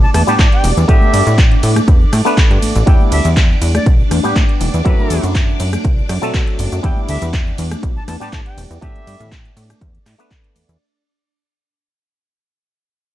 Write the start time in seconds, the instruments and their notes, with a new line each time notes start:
Already playing: clav G3 B3 D4 E4, string machine D4 D5
0.03 flute A5, shaker
0.14 analog synth bass E2, flute A5, cross-stick, open hi-hat, ride, high conga, shaker
0.27 analog synth bass A2, clav G3 B3 D4 G4, flute A5, shaker
0.39 analog synth bass A2, flute A5, kick, clap, closed hi-hat, shaker
0.52 flute G5, closed hi-hat, shaker
0.64 analog synth bass E1, open hi-hat, ride, high conga, shaker
0.77 analog synth bass E2, closed hi-hat, shaker
0.88 analog synth bass A2, clav A3 B3 D4 G4, flute E5, kick, closed hi-hat, shaker
1.01 high conga, shaker
1.14 analog synth bass G2, open hi-hat, ride, shaker
1.27 analog synth bass A2, closed hi-hat, shaker
1.38 kick, clap, closed hi-hat, shaker
1.51 closed hi-hat, shaker
1.63 analog synth bass A2, open hi-hat, ride, shaker
1.76 cross-stick, closed hi-hat, high conga, shaker
1.88 analog synth bass E2, kick, closed hi-hat, shaker
2.01 shaker
2.13 analog synth bass A2, cross-stick, open hi-hat, ride, shaker
2.25 clav A3 B3 D4 B4, shaker
2.37 kick, clap, closed hi-hat, shaker
2.51 analog synth bass G2, closed hi-hat, shaker
2.62 analog synth bass A1, open hi-hat, ride, high conga, shaker
2.75 analog synth bass A1, closed hi-hat, shaker
2.86 analog synth bass E2, clav G3 B3 D4 E4, string machine D4 D5, flute G5, kick, closed hi-hat, shaker
3.00 high conga, shaker
3.12 analog synth bass D2, flute E5, open hi-hat, ride, shaker
3.25 analog synth bass E2, closed hi-hat, shaker
3.36 kick, clap, closed hi-hat, shaker
3.51 shaker
3.62 analog synth bass E2, open hi-hat, ride, shaker
3.75 flute D5, cross-stick, closed hi-hat, high conga, shaker
3.86 analog synth bass B1, kick, closed hi-hat, shaker
4.00 shaker
4.11 analog synth bass E2, cross-stick, open hi-hat, ride, high conga, shaker
4.23 analog synth bass A2, clav G3 B3 D4 G4, shaker
4.36 analog synth bass A2, kick, clap, closed hi-hat, shaker
4.49 closed hi-hat, shaker
4.61 analog synth bass E1, open hi-hat, ride, high conga, shaker
4.74 analog synth bass E2, closed hi-hat, shaker
4.85 analog synth bass F#2, clav F#3 A3 C4 E4, flute B4, kick, closed hi-hat, shaker
4.99 high conga, shaker
5.10 analog synth bass E2, open hi-hat, ride, shaker
5.23 analog synth bass F#2, closed hi-hat, shaker
5.35 kick, clap, closed hi-hat, shaker
5.49 shaker
5.60 analog synth bass F#2, open hi-hat, ride, shaker
5.72 cross-stick, closed hi-hat, high conga, shaker
5.84 analog synth bass C2, kick, closed hi-hat, shaker
5.98 shaker
6.09 analog synth bass F#2, cross-stick, open hi-hat, ride, shaker
6.22 analog synth bass B2, clav F#3 A3 C4 A4, shaker
6.33 analog synth bass B2, kick, clap, closed hi-hat, shaker
6.47 closed hi-hat, shaker
6.59 analog synth bass F#1, open hi-hat, ride, high conga, shaker
6.71 analog synth bass F#2, closed hi-hat, shaker
6.83 analog synth bass E2, clav G3 B3 D4 E4, flute G5, kick, closed hi-hat, shaker
6.96 high conga, shaker
7.08 analog synth bass D2, flute E5, open hi-hat, ride, shaker
7.22 analog synth bass E2, closed hi-hat, shaker
7.33 kick, clap, closed hi-hat, shaker
7.46 shaker
7.58 analog synth bass E2, open hi-hat, ride, shaker
7.71 cross-stick, closed hi-hat, high conga, shaker
7.83 analog synth bass B1, kick, closed hi-hat, shaker
7.96 flute A5, shaker
8.08 analog synth bass E2, flute A5, cross-stick, open hi-hat, ride, high conga, shaker
8.20 analog synth bass A2, clav G3 B3 D4 G4, flute A5, shaker
8.33 analog synth bass A2, flute A5, kick, clap, closed hi-hat, shaker
8.46 flute G5, closed hi-hat, shaker
8.57 analog synth bass E1, open hi-hat, ride, high conga, shaker
8.71 analog synth bass E2, closed hi-hat, shaker
8.81 analog synth bass A2, clav A3 B3 D4 G4, flute E5, kick, closed hi-hat, shaker
8.96 closed hi-hat, high conga, shaker
9.07 analog synth bass G2, open hi-hat, ride, shaker
9.20 analog synth bass A2, closed hi-hat, low conga, shaker
9.32 kick, clap, closed hi-hat, shaker
9.45 closed hi-hat
9.57 analog synth bass A2, open hi-hat, ride, shaker
9.70 cross-stick, closed hi-hat, high conga, shaker
9.81 analog synth bass E2, kick, closed hi-hat, shaker
9.95 closed hi-hat
10.06 analog synth bass A2, cross-stick, clap, open hi-hat, ride, shaker
10.18 clav A3 B3 D4 B4, closed hi-hat, shaker
10.31 kick, clap, closed hi-hat
10.44 closed hi-hat
10.56 analog synth bass E2, open hi-hat, ride, high conga, shaker
10.69 analog synth bass E2, shaker